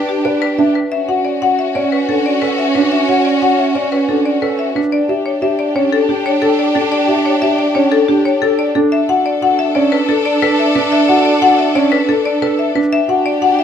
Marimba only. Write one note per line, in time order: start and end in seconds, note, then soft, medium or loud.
0.00 0.13 B4 medium
0.09 0.30 G4 medium
0.25 0.47 D5 medium
0.42 0.64 B4 medium
0.59 0.80 E5 medium
0.75 0.97 B4 medium
0.92 1.13 E5 medium
1.09 1.30 F#5 medium
1.25 1.47 D5 medium
1.42 1.64 F#5 medium
1.59 1.80 E5 medium
1.75 1.97 D5 medium
1.92 2.14 B4 medium
2.09 2.30 A4 medium
2.26 2.47 D5 medium
2.42 2.63 B4 medium
2.58 2.80 E5 medium
2.75 2.97 B4 medium
2.92 3.14 E5 medium
3.09 3.30 F#5 medium
3.25 3.47 D5 medium
3.42 3.64 F#5 medium
3.58 3.80 E5 medium
3.75 3.97 D5 medium
3.92 4.14 B4 medium
4.09 4.30 A4 medium
4.26 4.47 D5 medium
4.42 4.64 B4 medium
4.59 4.80 E5 medium
4.76 4.97 B4 medium
4.92 5.14 D5 medium
5.09 5.31 E5 medium
5.26 5.47 C#5 medium
5.42 5.64 E5 medium
5.59 5.80 D5 medium
5.76 5.97 C#5 medium
5.92 6.14 A4 medium
6.09 6.30 G4 medium
6.26 6.47 C#5 medium
6.42 6.64 A4 medium
6.59 6.80 D5 medium
6.75 6.97 A4 medium
6.92 7.13 D5 medium
7.08 7.30 E5 medium
7.26 7.47 C#5 medium
7.42 7.64 E5 medium
7.58 7.80 D5 medium
7.75 7.97 C#5 medium
7.92 8.13 A4 medium
8.08 8.30 G4 medium
8.25 8.47 C#5 medium
8.42 8.64 A4 medium
8.59 8.80 D5 medium
8.75 8.97 A4 medium
8.92 9.14 E5 medium
9.09 9.30 F#5 medium
9.26 9.47 D5 medium
9.42 9.64 F#5 medium
9.59 9.80 E5 medium
9.75 9.97 D5 medium
9.92 10.14 B4 medium
10.09 10.30 A4 medium
10.25 10.47 D5 medium
10.42 10.64 B4 medium
10.59 10.80 E5 medium
10.75 10.97 B4 medium
10.92 11.14 E5 medium
11.08 11.30 F#5 medium
11.25 11.47 D5 medium
11.42 11.64 F#5 medium
11.59 11.80 E5 medium
11.75 11.97 D5 medium
11.92 12.14 B4 medium
12.09 12.30 A4 medium
12.25 12.47 D5 medium
12.42 12.64 B4 medium
12.59 12.80 E5 medium
12.76 12.97 B4 medium
12.93 13.14 E5 medium
13.09 13.30 F#5 medium
13.26 13.47 D5 medium
13.42 13.64 F#5 medium
13.59 13.64 E5 medium